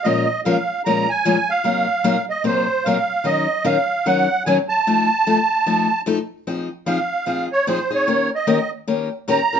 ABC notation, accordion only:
X:1
M:4/4
L:1/8
Q:"Swing" 1/4=150
K:Fphr
V:1 name="Accordion"
e2 f2 b a2 f- | f3 e c2 f2 | e2 f2 g2 a =a- | =a6 z2 |
[K:Fm] z2 f3 d c d- | d e2 z3 b2 |]